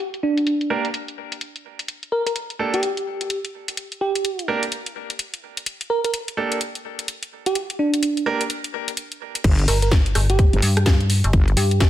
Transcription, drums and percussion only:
0.14 closed hi-hat soft
0.37 closed hi-hat soft
0.47 closed hi-hat medium
0.61 closed hi-hat soft
0.85 closed hi-hat soft
0.94 closed hi-hat medium
1.08 closed hi-hat soft
1.32 closed hi-hat soft
1.41 closed hi-hat medium
1.56 closed hi-hat soft
1.79 closed hi-hat soft
1.88 closed hi-hat medium
2.03 closed hi-hat soft
2.27 closed hi-hat soft
2.36 closed hi-hat medium
2.50 closed hi-hat soft
2.74 closed hi-hat soft
2.83 closed hi-hat medium
2.97 closed hi-hat soft
3.21 closed hi-hat soft
3.30 closed hi-hat medium
3.45 closed hi-hat soft
3.68 closed hi-hat soft
3.77 closed hi-hat medium
3.92 closed hi-hat soft
4.15 closed hi-hat soft
4.25 closed hi-hat medium
4.39 closed hi-hat soft
4.63 closed hi-hat medium
4.72 closed hi-hat medium
4.86 closed hi-hat soft
5.10 closed hi-hat soft
5.19 closed hi-hat medium
5.34 closed hi-hat soft
5.57 closed hi-hat soft
5.66 closed hi-hat medium
5.81 closed hi-hat soft
6.04 closed hi-hat medium
6.14 closed hi-hat medium
6.28 closed hi-hat soft
6.52 closed hi-hat medium
6.61 closed hi-hat medium
6.75 closed hi-hat soft
6.99 closed hi-hat medium
7.08 closed hi-hat medium
7.23 closed hi-hat soft
7.46 closed hi-hat medium
7.55 closed hi-hat medium
7.70 closed hi-hat soft
7.94 closed hi-hat medium
8.03 closed hi-hat medium
8.17 closed hi-hat soft
8.41 closed hi-hat medium
8.50 closed hi-hat medium
8.64 closed hi-hat soft
8.88 closed hi-hat medium
8.97 closed hi-hat medium
9.12 closed hi-hat soft
9.35 closed hi-hat medium
9.44 kick loud
9.44 closed hi-hat medium
9.44 crash loud
9.59 closed hi-hat soft
9.68 open hi-hat loud
9.82 closed hi-hat medium
9.92 kick loud
9.92 snare loud
9.92 closed hi-hat medium
10.06 closed hi-hat soft
10.15 cross-stick medium
10.15 open hi-hat medium
10.30 closed hi-hat medium
10.39 kick loud
10.39 closed hi-hat medium
10.53 closed hi-hat soft
10.62 open hi-hat loud
10.77 cross-stick medium
10.77 closed hi-hat medium
10.86 kick loud
10.86 snare loud
10.86 closed hi-hat medium
11.01 closed hi-hat soft
11.10 open hi-hat medium
11.24 closed hi-hat medium
11.33 kick loud
11.33 closed hi-hat medium
11.48 closed hi-hat soft
11.57 open hi-hat loud
11.71 closed hi-hat medium
11.80 kick loud
11.80 snare loud
11.80 closed hi-hat medium

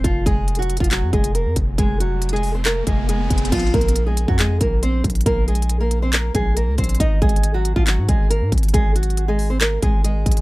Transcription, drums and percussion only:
0.04 kick loud
0.04 closed hi-hat medium
0.26 kick loud
0.26 closed hi-hat medium
0.48 closed hi-hat medium
0.55 closed hi-hat medium
0.62 closed hi-hat medium
0.70 closed hi-hat medium
0.77 kick medium
0.77 closed hi-hat medium
0.84 closed hi-hat medium
0.91 clap loud
0.91 closed hi-hat medium
1.13 kick loud
1.13 closed hi-hat soft
1.24 closed hi-hat medium
1.35 closed hi-hat medium
1.56 kick medium
1.56 closed hi-hat medium
1.78 kick loud
1.78 closed hi-hat medium
2.00 closed hi-hat medium
2.22 closed hi-hat medium
2.29 closed hi-hat medium
2.36 closed hi-hat soft
2.43 open hi-hat medium
2.65 clap loud
2.65 closed hi-hat medium
2.87 kick loud
2.87 closed hi-hat medium
3.09 closed hi-hat medium
3.30 kick medium
3.30 closed hi-hat medium
3.38 closed hi-hat medium
3.45 closed hi-hat medium
3.52 kick loud
3.52 closed hi-hat medium
3.52 crash loud
3.59 closed hi-hat soft
3.67 closed hi-hat soft
3.74 kick loud
3.74 closed hi-hat soft
3.81 closed hi-hat medium
3.88 closed hi-hat medium
3.96 closed hi-hat medium
4.17 closed hi-hat medium
4.28 kick medium
4.39 clap loud
4.39 closed hi-hat medium
4.61 kick loud
4.61 closed hi-hat medium
4.83 closed hi-hat medium
5.04 kick medium
5.04 closed hi-hat medium
5.10 closed hi-hat medium
5.15 closed hi-hat medium
5.21 closed hi-hat medium
5.26 kick loud
5.26 closed hi-hat medium
5.48 closed hi-hat soft
5.55 closed hi-hat medium
5.62 closed hi-hat medium
5.69 closed hi-hat medium
5.91 closed hi-hat medium
6.13 clap loud
6.13 closed hi-hat medium
6.35 kick loud
6.35 closed hi-hat medium
6.57 closed hi-hat medium
6.78 kick medium
6.78 closed hi-hat medium
6.78 open hi-hat medium
6.84 closed hi-hat medium
6.89 closed hi-hat medium
6.95 closed hi-hat medium
7.00 kick loud
7.00 closed hi-hat medium
7.22 kick loud
7.22 closed hi-hat soft
7.29 closed hi-hat medium
7.36 closed hi-hat medium
7.43 closed hi-hat medium
7.65 closed hi-hat medium
7.76 kick medium
7.87 clap loud
7.87 closed hi-hat medium
8.09 kick loud
8.09 closed hi-hat medium
8.31 closed hi-hat medium
8.52 kick medium
8.52 closed hi-hat medium
8.58 closed hi-hat medium
8.63 closed hi-hat medium
8.69 closed hi-hat medium
8.74 kick loud
8.74 closed hi-hat medium
8.96 closed hi-hat medium
9.03 closed hi-hat medium
9.10 closed hi-hat soft
9.17 closed hi-hat medium
9.39 open hi-hat medium
9.61 clap loud
9.61 closed hi-hat medium
9.82 kick loud
9.82 closed hi-hat medium
10.04 closed hi-hat medium
10.26 kick medium
10.26 closed hi-hat medium
10.32 closed hi-hat medium
10.37 closed hi-hat medium

